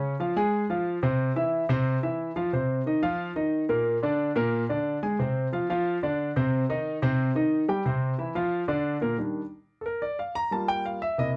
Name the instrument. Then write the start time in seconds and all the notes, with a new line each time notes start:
grand piano
Already playing: C#3 C#4 C#5
0.20 F3 F4 F5
0.36 G#3 G#4 G#5
0.70 F3 F4 F5
1.03 C3 C4 C5
1.36 E3 E4 E5
1.69 C3 C4 C5
2.03 E3 E4 E5
2.36 F3 F4 F5
2.53 C3 C4 C5
2.86 D#3 D#4 D#5
3.02 F3 F4 F5
3.36 D#3 D#4 D#5
3.69 A#2 A#3 A#4
4.03 D3 D4 D5
4.36 A#2 A#3 A#4
4.69 D3 D4 D5
5.03 G#3 G#4 G#5
5.19 C3 C4 C5
5.53 F3 F4 F5
5.70 F3 F4 F5
6.03 D3 D4 D5
6.36 C3 C4 C5
6.69 D#3 D#4 D#5
7.02 C3 C4 C5
7.35 D#3 D#4 D#5
7.68 G3 G4 G5
7.85 C3 C4 C5
8.18 E3 E4 E5
8.35 F3 F4 F5
8.68 D3 D4 D5
9.01 A#2 A#3 A#4
9.18 D#3 G3 D4
9.81 A4
9.86 A#4
10.02 D5
10.19 F5
10.35 A#5
10.51 G3 A#3 F4 A5
10.68 G5
10.86 F5
11.02 E5
11.18 C3 A#3 E4 D#5